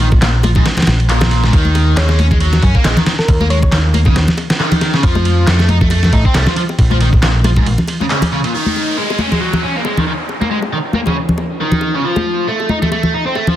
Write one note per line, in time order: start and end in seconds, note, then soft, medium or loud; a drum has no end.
0.00 0.19 A#1 loud
0.00 ride medium
0.12 kick loud
0.12 high bongo medium
0.22 0.63 A#1 loud
0.22 0.26 A#2 medium
0.22 snare loud
0.22 clap loud
0.22 ride medium
0.43 0.48 F3 medium
0.43 ride medium
0.43 high bongo medium
0.43 high conga loud
0.55 0.65 G#2 loud
0.55 kick medium
0.55 low conga medium
0.66 snare loud
0.66 ride medium
0.77 snare medium
0.77 ride medium
0.77 low conga medium
0.82 snare medium
0.82 ride medium
0.87 1.50 A#1 medium
0.87 snare loud
0.87 ride medium
0.87 high bongo soft
1.00 ride soft
1.09 1.42 A#2 medium
1.09 clap loud
1.09 ride medium
1.21 snare loud
1.21 high bongo medium
1.21 low conga medium
1.31 snare soft
1.31 ride medium
1.44 1.53 G#2 loud
1.44 snare soft
1.53 1.94 D#2 medium
1.53 1.96 D#3 medium
1.53 kick loud
1.53 ride medium
1.65 high conga medium
1.75 ride medium
1.75 high bongo medium
1.97 2.60 D#2 loud
1.97 2.18 G#3 medium
1.97 2.13 C#5 medium
1.97 snare loud
1.97 clap loud
1.97 ride medium
2.09 snare soft
2.09 high bongo medium
2.19 2.27 C#4 medium
2.19 ride medium
2.19 high conga medium
2.31 2.37 G#3 medium
2.31 kick medium
2.31 low conga medium
2.40 2.62 F#3 medium
2.40 ride medium
2.53 snare soft
2.53 high bongo soft
2.53 low conga medium
2.62 2.73 F#2 medium
2.62 2.74 C#4 medium
2.62 kick medium
2.62 ride medium
2.75 2.84 A#3 medium
2.75 muted picked electric bass stroke soft
2.75 kick medium
2.84 2.95 A#1 medium
2.84 2.96 G#3 medium
2.84 snare loud
2.84 clap loud
2.84 ride medium
2.84 high bongo medium
2.97 3.03 D#3 medium
2.97 snare soft
2.97 low conga medium
3.06 3.11 D#3 medium
3.06 snare loud
3.06 ride medium
3.19 3.48 A#4 medium
3.19 snare soft
3.28 3.69 D#2 loud
3.28 kick loud
3.28 ride medium
3.28 high bongo soft
3.41 3.47 A#3 medium
3.41 high conga medium
3.50 3.58 G#3 medium
3.50 3.58 C#5 medium
3.50 ride medium
3.63 3.69 C#5 medium
3.63 kick loud
3.63 high bongo medium
3.72 4.13 D#2 loud
3.72 3.77 D#3 medium
3.72 snare loud
3.72 clap loud
3.72 ride medium
3.94 3.99 A#3 medium
3.94 ride medium
3.94 high conga medium
4.05 4.15 C#3 loud
4.05 kick loud
4.05 high bongo soft
4.05 low conga medium
4.16 4.26 D#2 medium
4.16 snare loud
4.16 ride medium
4.28 snare soft
4.28 low conga medium
4.37 ride medium
4.37 high bongo medium
4.50 snare loud
4.50 ride medium
4.60 4.93 D#3 medium
4.60 snare soft
4.60 clap medium
4.72 ride medium
4.72 low conga medium
4.81 snare soft
4.81 ride medium
4.81 high bongo medium
4.94 5.03 C#3 loud
4.94 snare soft
5.03 5.44 F2 loud
5.03 5.46 F3 medium
5.03 kick loud
5.03 ride medium
5.15 high bongo medium
5.15 high conga medium
5.25 ride medium
5.47 6.10 F2 loud
5.47 5.68 A3 medium
5.47 snare loud
5.47 clap loud
5.47 ride medium
5.59 snare soft
5.59 high bongo soft
5.69 5.77 D#4 medium
5.69 ride medium
5.69 high conga medium
5.81 5.87 A3 medium
5.81 kick medium
5.81 low conga medium
5.90 6.12 A3 medium
5.90 ride medium
5.90 high bongo medium
6.03 snare soft
6.03 low conga medium
6.13 6.23 A2 medium
6.13 6.24 D#4 medium
6.13 kick loud
6.13 ride medium
6.25 6.34 C4 medium
6.25 muted picked electric bass stroke soft
6.25 kick loud
6.34 6.45 C2 medium
6.34 6.46 A3 medium
6.34 snare loud
6.34 clap loud
6.34 ride medium
6.34 high bongo medium
6.46 6.53 F3 loud
6.46 snare soft
6.46 low conga medium
6.56 6.61 F3 medium
6.56 ride medium
6.69 high bongo medium
6.78 7.20 A#1 loud
6.78 kick loud
6.78 ride medium
6.91 6.97 F3 medium
6.91 high conga medium
7.01 7.08 D#3 loud
7.01 ride medium
7.13 kick loud
7.13 high bongo soft
7.23 7.64 A#1 loud
7.23 7.27 A#2 loud
7.23 snare loud
7.23 clap loud
7.23 ride medium
7.44 7.49 F3 medium
7.44 ride medium
7.44 high bongo medium
7.44 high conga medium
7.56 7.66 G#2 loud
7.56 kick loud
7.56 low conga medium
7.66 7.76 A#1 medium
7.66 ride medium
7.78 low conga medium
7.88 ride medium
7.88 high bongo medium
8.01 8.04 C#3 medium
8.01 high conga medium
8.10 8.18 C#3 medium
8.10 clap loud
8.10 ride medium
8.22 ride medium
8.22 high bongo medium
8.22 low conga medium
8.32 8.40 C#3 loud
8.44 8.53 A#2 loud
8.44 ride medium
8.54 8.97 D#3 medium
8.54 downlifter medium
8.66 high conga medium
8.76 high bongo soft
8.98 9.19 G#3 medium
9.10 high bongo medium
9.19 9.27 C#4 medium
9.19 high conga medium
9.32 9.38 G#3 medium
9.32 low conga medium
9.41 9.62 F#3 medium
9.53 high bongo medium
9.53 low conga medium
9.63 9.74 C#4 medium
9.76 9.84 A#3 medium
9.85 9.96 G#3 medium
9.85 high bongo medium
9.97 10.03 D#3 medium
9.97 low conga medium
10.07 10.12 D#3 medium
10.29 high bongo soft
10.41 10.47 A#3 medium
10.41 high conga medium
10.51 10.58 G#3 medium
10.62 high bongo medium
10.73 10.77 D#3 medium
10.93 10.99 A#3 medium
10.93 high conga medium
11.06 11.16 C#3 medium
11.06 high bongo medium
11.06 low conga medium
11.29 low conga medium
11.38 high bongo medium
11.60 11.93 D#3 medium
11.72 low conga medium
11.81 high bongo soft
11.94 12.03 C#3 medium
12.04 12.47 F3 medium
12.16 high bongo medium
12.16 high conga medium
12.48 12.69 A3 medium
12.60 high bongo soft
12.69 12.78 D#4 medium
12.69 high conga medium
12.82 12.88 A3 medium
12.82 low conga medium
12.92 13.13 A3 medium
12.92 high bongo medium
13.03 low conga medium
13.14 13.25 D#4 medium
13.26 13.35 C4 medium
13.35 13.47 A3 medium
13.35 high bongo soft
13.47 13.54 F3 medium
13.47 low conga medium